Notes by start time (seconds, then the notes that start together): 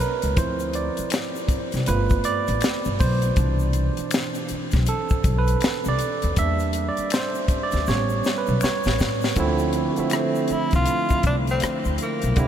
Already playing: A#4 C#5
0.00 B4, shaker
0.22 C#2, closed hi-hat, shaker
0.37 D2 F3 C4 E4 C5, kick, closed hi-hat, shaker
0.60 closed hi-hat, shaker
0.74 D5, closed hi-hat, shaker
0.97 muted upright bass stroke, closed hi-hat, shaker
1.10 finger snap, snare, closed hi-hat, shaker
1.35 shaker
1.48 muted upright bass stroke, kick, closed hi-hat, shaker
1.72 C2, snare, closed hi-hat, shaker
1.86 G1 A3 B3 F4 B4, closed hi-hat, shaker
2.10 kick, closed hi-hat, shaker
2.24 D5, closed hi-hat, shaker
2.47 A1, closed hi-hat, shaker
2.61 finger snap, snare, closed hi-hat, shaker
2.85 G1, shaker
2.99 B1 C5, kick, open hi-hat, shaker
3.22 closed hi-hat, shaker
3.36 C2 B2 E3 D4, kick, closed hi-hat, shaker
3.59 shaker
3.73 closed hi-hat, shaker
3.97 muted upright bass stroke, closed hi-hat, shaker
4.11 finger snap, snare, closed hi-hat, shaker
4.35 closed hi-hat, shaker
4.48 muted upright bass stroke, closed hi-hat, shaker
4.71 B1, kick, snare, closed hi-hat, shaker
4.86 A4, closed hi-hat, shaker
5.09 muted upright bass stroke, kick, shaker
5.24 B1, kick, closed hi-hat, shaker
5.38 B4
5.48 closed hi-hat, shaker
5.61 finger snap, snare, closed hi-hat, shaker
5.85 C2 D5, shaker
5.99 closed hi-hat, shaker
6.22 D#2, closed hi-hat, shaker
6.36 E2 G3 A#3 D4 E5, kick, closed hi-hat, shaker
6.59 closed hi-hat, shaker
6.73 closed hi-hat, shaker
6.89 D5
6.97 muted upright bass stroke, closed hi-hat, shaker
7.10 C5, finger snap, snare, closed hi-hat, shaker
7.35 shaker
7.48 muted upright bass stroke, kick, closed hi-hat, shaker
7.63 D5
7.72 D2, closed hi-hat, shaker
7.76 snare
7.86 A1 G3 B3 C#4 C#5, snare, shaker
8.09 shaker
8.24 snare, shaker
8.38 B4
8.47 B1, shaker
8.61 C#5, finger snap, muted upright bass stroke, snare, shaker
8.84 A1, snare, shaker
8.99 A2, snare, shaker
9.21 snare, shaker
9.36 D2 D3 F3 A3 C4, kick, closed hi-hat, shaker
9.40 E4
9.59 closed hi-hat, shaker
9.73 closed hi-hat, shaker
9.96 D3 F3 A3 C4 E5, muted upright bass stroke, closed hi-hat, shaker
10.10 finger snap, cross-stick, closed hi-hat, shaker
10.14 C4
10.35 shaker
10.48 muted upright bass stroke, closed hi-hat, shaker
10.52 E4
10.71 C2, kick, cross-stick, closed hi-hat, shaker
10.75 F4
10.86 closed hi-hat, shaker
11.09 muted upright bass stroke, kick, closed hi-hat, shaker
11.23 C2 D4, kick, closed hi-hat, shaker
11.47 C4, closed hi-hat, shaker
11.60 finger snap, muted upright bass stroke, cross-stick, closed hi-hat, shaker
11.85 D2, shaker
11.98 closed hi-hat, shaker
12.03 A#3
12.22 B1, closed hi-hat, shaker
12.36 C2 D3 G3 A#3 C4 E4, kick, closed hi-hat, shaker